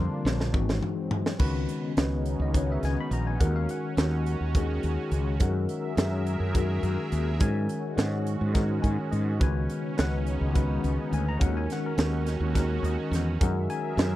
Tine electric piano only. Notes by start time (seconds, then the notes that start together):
Already playing: D3 G3 C4 F4 A#4 C6
0.52 E3 G#3 C4 D#4 F#4
1.38 D#3 G#3 C#4 F#4 B4
1.96 D#3 G#3 C#4 F#4 B4
2.42 D#5
2.52 D#3 G#3 C#4 F#4 B4
2.57 C#5
2.72 E5
2.85 G#5
3.00 B5
3.13 A#5
3.27 G#5
3.40 D#3 G#3 C#4 F#4 A#4 F#5
3.56 F5
3.71 F#5
3.98 D#3 G#3 C#4 F#4 A#4
4.56 D#3 G#3 C#4 F#4 G#4
5.39 D#3 G#3 C#4 F#4 A#4 F#5
5.98 D#3 G#3 C#4 F#4 A#4 E5
6.55 D#3 G#3 C#4 F#4 A#4
7.39 D#3 G#3 C#4 F#4 A#4 G#5
7.96 D#3 G#3 C#4 F#4 C#5 F#5
8.53 D#3 G#3 C#4 F#4 A#4
8.82 G#5
9.11 D#5
9.39 D#3 G#3 C#4 F#4 B4
9.43 G#5
9.97 D#3 G#3 C#4 F#4 B4 F#5
10.53 D#3 G#3 C#4 F#4 B4
11.14 G#5
11.29 A#5
11.38 D#3 G#3 C#4 F#4 A#4 F#5
11.57 G#5
11.72 F#5
11.86 A#4
11.96 D#3 G#3 C#4 F#4 A#4
12.54 D#3 G#3 C#4 F#4 A#4
12.86 D#5
13.41 D#3 G#3 C#4 F#4 A#4 F#5
13.70 G#5
13.96 D#3 G#3 C#4 F#4 G#4